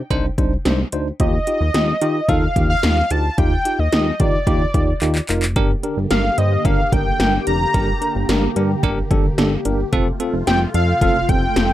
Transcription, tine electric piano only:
0.11 D4 D#4 C5
0.38 D4 D#4 C5
0.65 D4 D#4 C5
0.93 D4 D#4 C5
1.20 D#4 F4 G4
1.47 D#4 F4 G4
1.75 D#4 F4 G4
2.02 D#4 F4 G4
2.29 D#4 F4 A4
2.56 D#4 F4 G4
2.84 D#4 F4 G4
3.11 D#4 F4 G4
3.38 D#4 F4 G4
3.65 D#4 F4 G4
3.92 D#4 F4 G4
4.20 D#4 F4 G4
4.47 D#4 F4 G4
4.74 D#4 F4 G4
5.02 D#4 F4 G4
5.29 D#4 F4 A#4
5.56 D4 G4 A#4
5.83 D4 G4 A#4
6.11 D4 G4 A#4
6.38 D4 G4 C5
6.65 D4 G4 A#4
6.92 D4 G4 A#4
7.20 D4 G4 A#4
7.47 D4 G4 A#4
7.74 D4 G4 A#4
8.02 D4 G4 A#4
8.29 D4 G4 A#4
8.56 D4 G4 A#4
8.84 D4 G4 A#4
9.11 D4 G4 A4
9.38 D4 G4 A4
9.65 D4 G4 A#4
9.93 C4 F4 A4
10.20 C4 F4 A4
10.47 C4 F4 G4
10.75 C4 F4 A4
11.02 C4 F4 A4
11.29 C4 F4 A4
11.56 C4 F4 A4

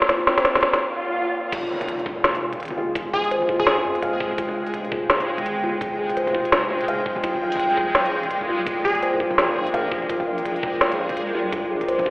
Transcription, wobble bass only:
1.52 F1
2.24 F1
2.60 G1
3.31 G1
3.85 F2
4.38 F1
5.10 F1
5.46 G1
6.17 F1
6.92 E1
7.13 D#1
7.24 A#1
7.95 A#1
8.31 C2
9.02 C2
9.56 A#1
10.10 A#1
10.81 A#1
11.17 C2
11.67 B1
11.88 A#1

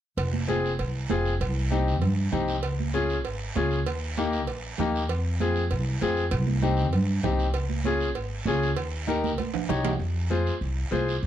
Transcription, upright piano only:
0.48 C4 F4 G#4
1.10 C4 F4 G#4
1.71 C4 D#4 G4
2.32 C4 D#4 G4
2.94 C#4 F4 G#4
3.56 C#4 F4 G#4
4.18 A#3 D#4 G4
4.79 A#3 D#4 G4
5.40 C4 F4 G#4
6.01 C4 F4 G#4
6.62 C4 D#4 G4
7.23 C4 D#4 G4
7.85 C#4 F4 G#4
8.47 C#4 F4 G#4
9.07 D#4 G4 A#4
9.69 D#4 G4 C#5
10.30 F4 G#4 C5
10.91 F4 G#4 C5

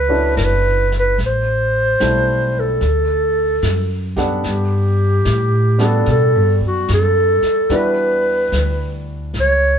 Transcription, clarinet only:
Already playing: B4
0.37 A#4
0.44 B4
0.99 B4
1.26 C5
2.60 A4
4.49 G4
5.84 A4
6.11 A4
6.67 F#4
6.94 A4
7.76 B4
9.40 C#5

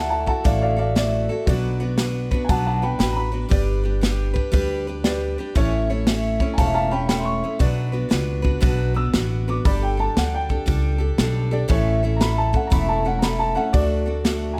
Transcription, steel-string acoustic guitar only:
Already playing: A3 E4 F#4 A4
0.26 E4 F#4 A4
0.44 D3 A3 E4 F#4 A4
0.76 E4 F#4 A4
0.95 A3 E4 F#4 A4
1.29 E4 F#4 A4
1.48 B2 F#3 B3 D4 F#4 B4
1.80 B3 D4 F#4 B4
1.97 B3 D4 F#4 B4
2.31 B3 D4 F#4 B4
2.49 B2 F#3 B3 D4 F#4 B4
2.82 B3 D4 F#4 B4
2.99 B3 D4 F#4 B4
3.32 B3 D4 F#4 B4
3.49 G3 D4 G4 B4
3.83 D4 G4 B4
4.01 G3 D4 G4 B4
4.34 D4 G4 B4
4.52 G3 D4 G4 B4
4.87 D4 G4 B4
5.05 G3 D4 G4 B4
5.38 D4 G4 B4
5.55 A2 E3 A3 C#4 E4 C#5
5.90 A3 C#4 E4 C#5
6.07 A3 C#4 E4 C#5
6.41 A3 C#4 E4 C#5
6.58 A2 E3 A3 C#4 E4 C#5
6.91 A3 C#4 E4 C#5
7.09 A3 C#4 E4 C#5
7.44 A3 C#4 E4 C#5
7.59 B2 F#3 B3 D4 F#4 B4
7.92 B3 D4 F#4 B4
8.09 B3 D4 F#4 B4
8.42 B3 D4 F#4 B4
8.60 B2 F#3 B3 D4 F#4 B4
8.94 B3 D4 F#4 B4
9.13 B3 D4 F#4 B4
9.48 B3 D4 F#4 B4
9.65 G3 D4 G4 A4
9.97 D4 G4 A4
10.16 G3 D4 G4 A4
10.49 D4 G4 A4
10.66 G3 D4 G4 A4
10.98 D4 G4 A4
11.19 G3 D4 G4 A4
11.51 D4 G4 A4
11.68 A2 E3 A3 C#4 E4 A4
12.03 A3 C#4 E4 A4
12.20 A3 C#4 E4 A4
12.53 A3 C#4 E4 A4
12.70 A2 E3 A3 C#4 E4 A4
13.05 A3 C#4 E4 A4
13.22 A3 C#4 E4 A4
13.55 A3 C#4 E4 A4
13.73 D3 A3 D4 F#4 A4
14.06 D4 F#4 A4
14.24 A3 D4 F#4 A4

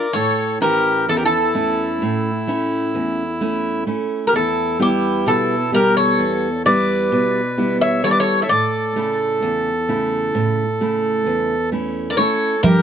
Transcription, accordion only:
Already playing: A#4
0.15 A4
0.62 G4
1.09 E4
1.17 G4
1.24 E4
4.28 G4
4.36 E4
4.82 E4
5.28 E4
5.75 G4
5.98 A4
6.66 B4
7.82 C#5
8.05 A4
8.13 B4
8.21 A4
8.44 C#5
8.53 A4
12.11 A#4
12.20 A4
12.66 G4

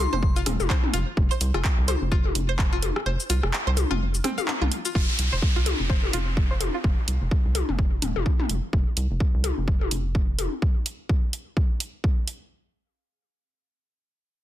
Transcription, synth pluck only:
0.13 C5
0.36 F4
0.70 C5
0.93 F4
1.31 C5
1.54 F4
1.88 C5
2.12 F4
2.49 C5
2.73 F4
3.06 C5
3.30 F4
3.67 C5
3.91 F4
4.24 C4
4.38 F5
4.62 F4
4.85 F4
4.95 F4
5.32 C5
5.56 F4
5.90 C5
6.13 F4
6.51 C5
6.74 F4

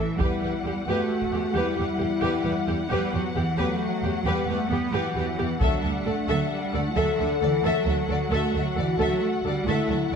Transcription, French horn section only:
Already playing: A3
0.20 E4
0.87 F#4
1.54 E4
2.89 B3
3.57 A3
4.25 G3
4.92 F#3
5.39 B3
5.61 D4
6.96 A4
8.31 F#4
9.66 E4

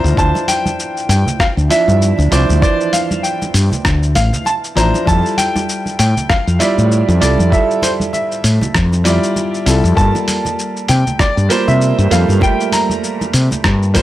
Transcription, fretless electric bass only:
0.04 D2
0.17 D2
1.09 G2
1.57 D2
1.88 G2
2.19 D2
2.32 C2
2.49 D2
3.54 G2
3.85 D2
4.15 A1
4.77 A1
5.07 F2
5.99 A2
6.47 F2
6.78 A2
7.08 F2
7.22 C2
7.39 F2
8.44 A2
8.75 F2
9.66 C2
9.84 F2
9.97 G2
10.89 C3
11.37 G2
11.68 C3
11.99 G2
12.11 F2
12.29 G2
13.34 C3
13.64 G2
13.95 G1

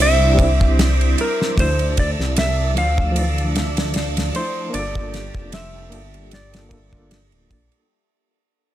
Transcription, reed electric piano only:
Already playing: G3 C4 D4 E4
0.19 G3 C4 D4
0.24 E4
0.35 G3 C4
0.41 D4 E4
1.56 F3 A3 D4
1.61 E4
2.75 F3 A3 D4
2.79 F4
3.12 F3 A3
3.18 E3 D4
4.33 F3 A3 D4
4.38 E4
4.70 A#3 D4
4.76 F4 A4
5.90 A#3 D4 F4
5.95 A4
6.51 A#3 D4 F4
6.56 A4
6.69 A#3 D4 F4
6.74 A4
6.89 A#3 D4
6.95 F4 A4

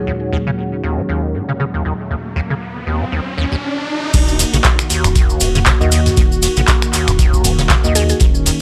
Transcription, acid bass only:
0.07 D#2
0.32 D#2
0.47 C#3
0.83 D#2
0.98 A#2
1.09 D#2
1.34 G#2
1.48 C#3
1.60 C#3
1.74 D#2
1.85 D#2
2.10 D#2
2.36 D#2
2.50 C#3
2.87 D#2
3.01 A#2
3.12 D#2
3.38 D#2
3.52 D#2
4.14 D#2
4.39 D#2
4.54 C#3
4.90 D#2
5.04 A#2
5.16 D#2
5.41 G#2
5.55 C#3
5.67 C#3
5.81 D#2
5.92 D#2
6.17 D#2
6.43 D#2
6.57 C#3
6.94 D#2
7.08 A#2
7.19 D#2
7.44 G#2
7.59 C#3
7.70 C#3
7.84 D#2
7.95 D#2
8.21 D#2
8.46 D#2

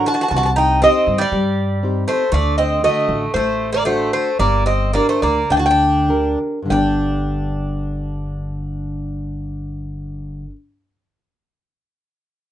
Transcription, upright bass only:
0.31 C2
1.07 G2
1.32 G2
2.32 D2
3.08 A1
3.34 A1
4.39 G1
5.22 D2
5.50 D2
6.70 G1

